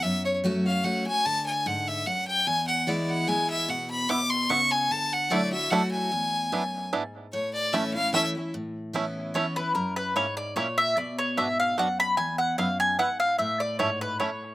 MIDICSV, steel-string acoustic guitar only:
0, 0, Header, 1, 2, 480
1, 0, Start_track
1, 0, Key_signature, 3, "major"
1, 0, Tempo, 404313
1, 47, Time_signature, 3, 2, 24, 8
1, 17269, End_track
2, 0, Start_track
2, 0, Title_t, "Steel-string acoustic guitar"
2, 0, Program_c, 0, 25
2, 50, Note_on_c, 0, 42, 89
2, 518, Note_on_c, 0, 54, 92
2, 527, Note_on_c, 0, 57, 106
2, 534, Note_on_c, 0, 61, 97
2, 540, Note_on_c, 0, 66, 113
2, 767, Note_off_c, 0, 66, 0
2, 768, Note_off_c, 0, 54, 0
2, 773, Note_off_c, 0, 57, 0
2, 776, Note_off_c, 0, 61, 0
2, 781, Note_on_c, 0, 66, 61
2, 801, Note_on_c, 0, 61, 51
2, 965, Note_off_c, 0, 42, 0
2, 993, Note_on_c, 0, 54, 85
2, 995, Note_off_c, 0, 61, 0
2, 999, Note_off_c, 0, 66, 0
2, 1000, Note_on_c, 0, 57, 88
2, 1010, Note_on_c, 0, 61, 92
2, 1015, Note_on_c, 0, 66, 100
2, 1246, Note_off_c, 0, 54, 0
2, 1246, Note_off_c, 0, 66, 0
2, 1250, Note_off_c, 0, 57, 0
2, 1254, Note_off_c, 0, 61, 0
2, 1260, Note_on_c, 0, 66, 61
2, 1280, Note_on_c, 0, 61, 53
2, 1479, Note_off_c, 0, 66, 0
2, 1489, Note_off_c, 0, 61, 0
2, 1493, Note_on_c, 0, 50, 96
2, 1970, Note_on_c, 0, 44, 99
2, 2408, Note_off_c, 0, 50, 0
2, 2429, Note_off_c, 0, 44, 0
2, 2460, Note_on_c, 0, 42, 91
2, 2914, Note_off_c, 0, 42, 0
2, 2930, Note_on_c, 0, 40, 94
2, 3406, Note_on_c, 0, 52, 103
2, 3413, Note_on_c, 0, 56, 96
2, 3422, Note_on_c, 0, 59, 105
2, 3428, Note_on_c, 0, 64, 102
2, 3848, Note_off_c, 0, 40, 0
2, 3868, Note_off_c, 0, 52, 0
2, 3871, Note_off_c, 0, 56, 0
2, 3876, Note_off_c, 0, 59, 0
2, 3879, Note_off_c, 0, 64, 0
2, 3885, Note_on_c, 0, 52, 86
2, 3890, Note_on_c, 0, 56, 88
2, 3903, Note_on_c, 0, 59, 85
2, 3904, Note_on_c, 0, 64, 99
2, 4348, Note_off_c, 0, 52, 0
2, 4351, Note_off_c, 0, 56, 0
2, 4357, Note_off_c, 0, 59, 0
2, 4358, Note_off_c, 0, 64, 0
2, 4374, Note_on_c, 0, 47, 94
2, 4841, Note_off_c, 0, 47, 0
2, 4856, Note_on_c, 0, 47, 98
2, 5314, Note_off_c, 0, 47, 0
2, 5336, Note_on_c, 0, 49, 93
2, 5795, Note_off_c, 0, 49, 0
2, 5828, Note_on_c, 0, 50, 91
2, 6294, Note_on_c, 0, 54, 95
2, 6301, Note_on_c, 0, 57, 104
2, 6305, Note_on_c, 0, 64, 104
2, 6311, Note_on_c, 0, 66, 118
2, 6541, Note_off_c, 0, 54, 0
2, 6544, Note_off_c, 0, 57, 0
2, 6544, Note_off_c, 0, 66, 0
2, 6546, Note_off_c, 0, 64, 0
2, 6558, Note_on_c, 0, 66, 65
2, 6577, Note_on_c, 0, 64, 53
2, 6739, Note_off_c, 0, 50, 0
2, 6772, Note_off_c, 0, 66, 0
2, 6781, Note_on_c, 0, 54, 87
2, 6782, Note_off_c, 0, 64, 0
2, 6789, Note_on_c, 0, 57, 93
2, 6798, Note_on_c, 0, 64, 100
2, 6799, Note_on_c, 0, 66, 100
2, 7238, Note_off_c, 0, 54, 0
2, 7242, Note_off_c, 0, 57, 0
2, 7246, Note_off_c, 0, 64, 0
2, 7247, Note_off_c, 0, 66, 0
2, 7261, Note_on_c, 0, 40, 91
2, 7737, Note_off_c, 0, 40, 0
2, 7741, Note_on_c, 0, 42, 104
2, 8198, Note_off_c, 0, 42, 0
2, 8224, Note_on_c, 0, 44, 90
2, 8680, Note_off_c, 0, 44, 0
2, 8705, Note_on_c, 0, 45, 91
2, 9173, Note_on_c, 0, 52, 87
2, 9183, Note_on_c, 0, 57, 109
2, 9190, Note_on_c, 0, 61, 117
2, 9199, Note_on_c, 0, 64, 105
2, 9417, Note_off_c, 0, 64, 0
2, 9421, Note_off_c, 0, 52, 0
2, 9426, Note_off_c, 0, 57, 0
2, 9430, Note_off_c, 0, 61, 0
2, 9431, Note_on_c, 0, 64, 68
2, 9453, Note_on_c, 0, 61, 56
2, 9618, Note_off_c, 0, 45, 0
2, 9648, Note_on_c, 0, 52, 93
2, 9649, Note_off_c, 0, 64, 0
2, 9650, Note_off_c, 0, 61, 0
2, 9657, Note_on_c, 0, 57, 95
2, 9664, Note_on_c, 0, 61, 98
2, 9672, Note_on_c, 0, 64, 105
2, 9896, Note_off_c, 0, 64, 0
2, 9899, Note_off_c, 0, 52, 0
2, 9903, Note_off_c, 0, 57, 0
2, 9907, Note_off_c, 0, 61, 0
2, 9910, Note_on_c, 0, 64, 70
2, 9937, Note_on_c, 0, 61, 58
2, 10129, Note_off_c, 0, 64, 0
2, 10139, Note_on_c, 0, 45, 82
2, 10142, Note_off_c, 0, 61, 0
2, 10606, Note_on_c, 0, 52, 91
2, 10616, Note_on_c, 0, 59, 102
2, 10624, Note_on_c, 0, 61, 85
2, 10633, Note_on_c, 0, 64, 95
2, 11055, Note_off_c, 0, 45, 0
2, 11071, Note_off_c, 0, 52, 0
2, 11076, Note_off_c, 0, 59, 0
2, 11080, Note_off_c, 0, 61, 0
2, 11084, Note_off_c, 0, 64, 0
2, 11089, Note_on_c, 0, 52, 90
2, 11099, Note_on_c, 0, 59, 87
2, 11109, Note_on_c, 0, 61, 92
2, 11114, Note_on_c, 0, 64, 85
2, 11335, Note_off_c, 0, 64, 0
2, 11340, Note_off_c, 0, 52, 0
2, 11345, Note_off_c, 0, 59, 0
2, 11350, Note_off_c, 0, 61, 0
2, 11350, Note_on_c, 0, 64, 65
2, 11373, Note_on_c, 0, 61, 48
2, 11569, Note_off_c, 0, 64, 0
2, 11577, Note_on_c, 0, 42, 88
2, 11581, Note_off_c, 0, 61, 0
2, 12053, Note_off_c, 0, 42, 0
2, 12058, Note_on_c, 0, 44, 88
2, 12517, Note_off_c, 0, 44, 0
2, 12534, Note_on_c, 0, 46, 86
2, 12996, Note_off_c, 0, 46, 0
2, 13020, Note_on_c, 0, 47, 88
2, 13503, Note_on_c, 0, 44, 87
2, 13935, Note_off_c, 0, 47, 0
2, 13959, Note_off_c, 0, 44, 0
2, 13984, Note_on_c, 0, 42, 88
2, 14439, Note_off_c, 0, 42, 0
2, 14455, Note_on_c, 0, 40, 95
2, 14930, Note_off_c, 0, 40, 0
2, 14935, Note_on_c, 0, 42, 96
2, 15394, Note_off_c, 0, 42, 0
2, 15426, Note_on_c, 0, 44, 86
2, 15879, Note_off_c, 0, 44, 0
2, 15898, Note_on_c, 0, 45, 93
2, 16379, Note_on_c, 0, 44, 96
2, 16810, Note_off_c, 0, 45, 0
2, 16834, Note_off_c, 0, 44, 0
2, 16854, Note_on_c, 0, 45, 86
2, 17269, Note_off_c, 0, 45, 0
2, 17269, End_track
0, 0, End_of_file